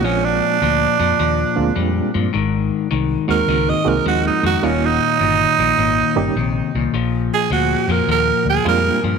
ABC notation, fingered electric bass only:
X:1
M:4/4
L:1/8
Q:"Swing" 1/4=104
K:Bbdor
V:1 name="Fingered electric bass" clef=bass
B,,,2 =D,, F,, E,, D,, F,, G,, | A,,,2 C,, E,, D,, C,, E,, F,, | E,,,2 G,,, B,,, A,,, G,,, B,,, C,, | B,,,2 =D,, F,, E,, D,, F,, G,, |]